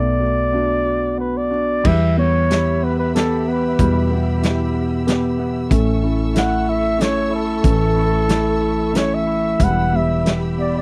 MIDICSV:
0, 0, Header, 1, 7, 480
1, 0, Start_track
1, 0, Tempo, 645856
1, 1373, Time_signature, 3, 2, 24, 8
1, 5682, Tempo, 652884
1, 8013, End_track
2, 0, Start_track
2, 0, Title_t, "String section"
2, 0, Program_c, 0, 48
2, 1375, Note_on_c, 0, 76, 66
2, 1379, Note_on_c, 0, 67, 72
2, 1380, Note_on_c, 0, 83, 70
2, 1380, Note_on_c, 0, 88, 78
2, 4216, Note_off_c, 0, 76, 0
2, 4218, Note_off_c, 0, 67, 0
2, 4218, Note_off_c, 0, 83, 0
2, 4243, Note_on_c, 0, 76, 70
2, 4245, Note_on_c, 0, 85, 72
2, 4246, Note_on_c, 0, 69, 85
2, 7090, Note_off_c, 0, 76, 0
2, 7091, Note_off_c, 0, 69, 0
2, 7091, Note_off_c, 0, 85, 0
2, 7116, Note_on_c, 0, 67, 80
2, 7116, Note_on_c, 0, 76, 70
2, 7121, Note_on_c, 0, 83, 70
2, 8013, Note_off_c, 0, 67, 0
2, 8013, Note_off_c, 0, 76, 0
2, 8013, Note_off_c, 0, 83, 0
2, 8013, Note_off_c, 0, 88, 0
2, 8013, End_track
3, 0, Start_track
3, 0, Title_t, "Flugelhorn"
3, 0, Program_c, 1, 56
3, 0, Note_on_c, 1, 74, 96
3, 888, Note_off_c, 1, 74, 0
3, 892, Note_on_c, 1, 71, 80
3, 1020, Note_on_c, 1, 74, 92
3, 1031, Note_off_c, 1, 71, 0
3, 1389, Note_on_c, 1, 76, 105
3, 1400, Note_off_c, 1, 74, 0
3, 1622, Note_off_c, 1, 76, 0
3, 1628, Note_on_c, 1, 73, 95
3, 2112, Note_on_c, 1, 71, 80
3, 2123, Note_off_c, 1, 73, 0
3, 2218, Note_off_c, 1, 71, 0
3, 2223, Note_on_c, 1, 71, 76
3, 2332, Note_off_c, 1, 71, 0
3, 2342, Note_on_c, 1, 69, 87
3, 2589, Note_on_c, 1, 71, 77
3, 2600, Note_off_c, 1, 69, 0
3, 3058, Note_off_c, 1, 71, 0
3, 4745, Note_on_c, 1, 78, 93
3, 4975, Note_on_c, 1, 76, 96
3, 4986, Note_off_c, 1, 78, 0
3, 5218, Note_on_c, 1, 73, 100
3, 5230, Note_off_c, 1, 76, 0
3, 5449, Note_off_c, 1, 73, 0
3, 5464, Note_on_c, 1, 69, 92
3, 6652, Note_on_c, 1, 73, 85
3, 6663, Note_off_c, 1, 69, 0
3, 6783, Note_on_c, 1, 76, 89
3, 6794, Note_off_c, 1, 73, 0
3, 7145, Note_on_c, 1, 78, 104
3, 7156, Note_off_c, 1, 76, 0
3, 7384, Note_on_c, 1, 76, 90
3, 7395, Note_off_c, 1, 78, 0
3, 7654, Note_off_c, 1, 76, 0
3, 7858, Note_on_c, 1, 74, 81
3, 7962, Note_off_c, 1, 74, 0
3, 7987, Note_on_c, 1, 74, 81
3, 8013, Note_off_c, 1, 74, 0
3, 8013, End_track
4, 0, Start_track
4, 0, Title_t, "Felt piano"
4, 0, Program_c, 2, 0
4, 0, Note_on_c, 2, 57, 65
4, 152, Note_off_c, 2, 57, 0
4, 164, Note_on_c, 2, 57, 47
4, 387, Note_off_c, 2, 57, 0
4, 398, Note_on_c, 2, 57, 47
4, 402, Note_on_c, 2, 62, 53
4, 406, Note_on_c, 2, 66, 57
4, 1115, Note_off_c, 2, 62, 0
4, 1126, Note_on_c, 2, 62, 48
4, 1364, Note_on_c, 2, 55, 72
4, 1374, Note_on_c, 2, 67, 66
4, 1418, Note_off_c, 2, 62, 0
4, 1419, Note_off_c, 2, 57, 0
4, 1423, Note_off_c, 2, 66, 0
4, 1613, Note_on_c, 2, 59, 53
4, 1859, Note_on_c, 2, 64, 56
4, 2327, Note_off_c, 2, 59, 0
4, 2338, Note_on_c, 2, 59, 60
4, 2805, Note_off_c, 2, 55, 0
4, 2810, Note_off_c, 2, 67, 0
4, 2816, Note_on_c, 2, 55, 82
4, 2822, Note_on_c, 2, 67, 65
4, 3039, Note_off_c, 2, 59, 0
4, 3050, Note_on_c, 2, 59, 56
4, 3273, Note_off_c, 2, 64, 0
4, 3284, Note_on_c, 2, 64, 57
4, 3755, Note_off_c, 2, 59, 0
4, 3766, Note_on_c, 2, 59, 63
4, 4238, Note_on_c, 2, 61, 83
4, 4242, Note_on_c, 2, 69, 68
4, 4244, Note_off_c, 2, 55, 0
4, 4244, Note_off_c, 2, 59, 0
4, 4247, Note_off_c, 2, 67, 0
4, 4289, Note_off_c, 2, 64, 0
4, 4462, Note_off_c, 2, 61, 0
4, 4473, Note_on_c, 2, 61, 57
4, 4713, Note_on_c, 2, 64, 60
4, 5177, Note_off_c, 2, 61, 0
4, 5188, Note_on_c, 2, 61, 60
4, 5659, Note_off_c, 2, 61, 0
4, 5664, Note_off_c, 2, 69, 0
4, 5670, Note_on_c, 2, 61, 70
4, 5675, Note_on_c, 2, 69, 68
4, 5899, Note_off_c, 2, 61, 0
4, 5910, Note_on_c, 2, 61, 54
4, 6139, Note_off_c, 2, 64, 0
4, 6150, Note_on_c, 2, 64, 58
4, 6616, Note_off_c, 2, 61, 0
4, 6627, Note_on_c, 2, 61, 53
4, 7108, Note_off_c, 2, 64, 0
4, 7114, Note_on_c, 2, 55, 72
4, 7116, Note_off_c, 2, 69, 0
4, 7119, Note_on_c, 2, 64, 66
4, 7163, Note_off_c, 2, 61, 0
4, 7345, Note_off_c, 2, 55, 0
4, 7356, Note_on_c, 2, 55, 57
4, 7597, Note_on_c, 2, 59, 53
4, 8013, Note_off_c, 2, 55, 0
4, 8013, Note_off_c, 2, 59, 0
4, 8013, Note_off_c, 2, 64, 0
4, 8013, End_track
5, 0, Start_track
5, 0, Title_t, "Tine electric piano"
5, 0, Program_c, 3, 4
5, 0, Note_on_c, 3, 59, 60
5, 66, Control_c, 3, 64, 127
5, 151, Note_on_c, 3, 66, 44
5, 381, Note_off_c, 3, 59, 0
5, 390, Note_on_c, 3, 59, 44
5, 630, Note_off_c, 3, 66, 0
5, 639, Note_on_c, 3, 66, 42
5, 867, Note_off_c, 3, 59, 0
5, 876, Note_on_c, 3, 59, 45
5, 1111, Note_off_c, 3, 66, 0
5, 1120, Note_on_c, 3, 66, 46
5, 1353, Note_off_c, 3, 59, 0
5, 1360, Note_off_c, 3, 66, 0
5, 1372, Note_on_c, 3, 52, 65
5, 1384, Control_c, 3, 64, 0
5, 1499, Control_c, 3, 64, 127
5, 1618, Note_on_c, 3, 59, 49
5, 1861, Note_on_c, 3, 67, 53
5, 2092, Note_off_c, 3, 59, 0
5, 2101, Note_on_c, 3, 59, 49
5, 2339, Note_off_c, 3, 67, 0
5, 2348, Note_on_c, 3, 67, 53
5, 2577, Note_off_c, 3, 59, 0
5, 2586, Note_on_c, 3, 59, 56
5, 2784, Note_off_c, 3, 52, 0
5, 2816, Note_on_c, 3, 47, 70
5, 3050, Note_off_c, 3, 59, 0
5, 3059, Note_on_c, 3, 59, 53
5, 3266, Note_off_c, 3, 67, 0
5, 3294, Note_on_c, 3, 67, 54
5, 3519, Note_off_c, 3, 59, 0
5, 3527, Note_on_c, 3, 59, 50
5, 3761, Note_off_c, 3, 67, 0
5, 3770, Note_on_c, 3, 67, 53
5, 3999, Note_off_c, 3, 59, 0
5, 4008, Note_on_c, 3, 59, 62
5, 4215, Note_off_c, 3, 47, 0
5, 4231, Note_off_c, 3, 67, 0
5, 4238, Note_off_c, 3, 59, 0
5, 4248, Note_on_c, 3, 57, 72
5, 4254, Control_c, 3, 64, 0
5, 4388, Control_c, 3, 64, 127
5, 4487, Note_on_c, 3, 64, 55
5, 4717, Note_off_c, 3, 57, 0
5, 4726, Note_on_c, 3, 57, 55
5, 4961, Note_off_c, 3, 64, 0
5, 4970, Note_on_c, 3, 64, 51
5, 5193, Note_off_c, 3, 57, 0
5, 5202, Note_on_c, 3, 57, 53
5, 5425, Note_off_c, 3, 64, 0
5, 5434, Note_on_c, 3, 64, 53
5, 5680, Note_on_c, 3, 52, 67
5, 5905, Note_off_c, 3, 64, 0
5, 5913, Note_on_c, 3, 64, 52
5, 6129, Note_off_c, 3, 57, 0
5, 6150, Note_on_c, 3, 57, 50
5, 6382, Note_off_c, 3, 64, 0
5, 6391, Note_on_c, 3, 64, 49
5, 6624, Note_off_c, 3, 57, 0
5, 6633, Note_on_c, 3, 57, 52
5, 6868, Note_off_c, 3, 64, 0
5, 6877, Note_on_c, 3, 64, 53
5, 7089, Note_off_c, 3, 52, 0
5, 7102, Note_off_c, 3, 57, 0
5, 7111, Note_off_c, 3, 64, 0
5, 7124, Note_on_c, 3, 52, 63
5, 7127, Control_c, 3, 64, 0
5, 7266, Control_c, 3, 64, 127
5, 7366, Note_on_c, 3, 59, 48
5, 7612, Note_on_c, 3, 67, 51
5, 7835, Note_off_c, 3, 59, 0
5, 7843, Note_on_c, 3, 59, 50
5, 8013, Note_off_c, 3, 52, 0
5, 8013, Note_off_c, 3, 59, 0
5, 8013, Note_off_c, 3, 67, 0
5, 8013, End_track
6, 0, Start_track
6, 0, Title_t, "Fretless electric bass"
6, 0, Program_c, 4, 35
6, 0, Note_on_c, 4, 35, 65
6, 1347, Note_off_c, 4, 35, 0
6, 1375, Note_on_c, 4, 40, 75
6, 2787, Note_off_c, 4, 40, 0
6, 2821, Note_on_c, 4, 40, 75
6, 4218, Note_off_c, 4, 40, 0
6, 4245, Note_on_c, 4, 33, 76
6, 5652, Note_off_c, 4, 33, 0
6, 5681, Note_on_c, 4, 33, 80
6, 7090, Note_off_c, 4, 33, 0
6, 7119, Note_on_c, 4, 28, 72
6, 8013, Note_off_c, 4, 28, 0
6, 8013, End_track
7, 0, Start_track
7, 0, Title_t, "Drums"
7, 1373, Note_on_c, 9, 49, 77
7, 1374, Note_on_c, 9, 36, 92
7, 1447, Note_off_c, 9, 49, 0
7, 1448, Note_off_c, 9, 36, 0
7, 1862, Note_on_c, 9, 42, 50
7, 1872, Note_on_c, 9, 38, 61
7, 1936, Note_off_c, 9, 42, 0
7, 1946, Note_off_c, 9, 38, 0
7, 2345, Note_on_c, 9, 42, 49
7, 2355, Note_on_c, 9, 38, 64
7, 2420, Note_off_c, 9, 42, 0
7, 2429, Note_off_c, 9, 38, 0
7, 2817, Note_on_c, 9, 36, 89
7, 2818, Note_on_c, 9, 42, 47
7, 2891, Note_off_c, 9, 36, 0
7, 2892, Note_off_c, 9, 42, 0
7, 3294, Note_on_c, 9, 42, 50
7, 3304, Note_on_c, 9, 38, 63
7, 3369, Note_off_c, 9, 42, 0
7, 3378, Note_off_c, 9, 38, 0
7, 3772, Note_on_c, 9, 42, 48
7, 3782, Note_on_c, 9, 38, 68
7, 3846, Note_off_c, 9, 42, 0
7, 3856, Note_off_c, 9, 38, 0
7, 4243, Note_on_c, 9, 36, 93
7, 4244, Note_on_c, 9, 42, 52
7, 4317, Note_off_c, 9, 36, 0
7, 4319, Note_off_c, 9, 42, 0
7, 4723, Note_on_c, 9, 42, 51
7, 4733, Note_on_c, 9, 38, 66
7, 4798, Note_off_c, 9, 42, 0
7, 4807, Note_off_c, 9, 38, 0
7, 5207, Note_on_c, 9, 42, 46
7, 5216, Note_on_c, 9, 38, 67
7, 5281, Note_off_c, 9, 42, 0
7, 5291, Note_off_c, 9, 38, 0
7, 5679, Note_on_c, 9, 36, 91
7, 5679, Note_on_c, 9, 42, 52
7, 5752, Note_off_c, 9, 36, 0
7, 5752, Note_off_c, 9, 42, 0
7, 6157, Note_on_c, 9, 42, 51
7, 6166, Note_on_c, 9, 38, 71
7, 6230, Note_off_c, 9, 42, 0
7, 6240, Note_off_c, 9, 38, 0
7, 6641, Note_on_c, 9, 42, 51
7, 6650, Note_on_c, 9, 38, 70
7, 6714, Note_off_c, 9, 42, 0
7, 6724, Note_off_c, 9, 38, 0
7, 7117, Note_on_c, 9, 42, 53
7, 7118, Note_on_c, 9, 36, 85
7, 7191, Note_off_c, 9, 36, 0
7, 7191, Note_off_c, 9, 42, 0
7, 7603, Note_on_c, 9, 42, 46
7, 7613, Note_on_c, 9, 38, 70
7, 7677, Note_off_c, 9, 42, 0
7, 7686, Note_off_c, 9, 38, 0
7, 8013, End_track
0, 0, End_of_file